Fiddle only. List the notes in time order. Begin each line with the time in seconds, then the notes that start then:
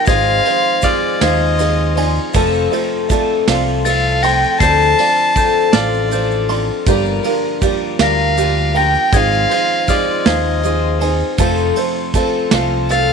0.07 F5
0.84 D5
1.22 D#5
3.87 F5
4.23 G5
4.60 A5
5.72 D5
8.00 F5
8.77 G5
9.16 F5
9.90 D5
10.28 D#5
12.90 F5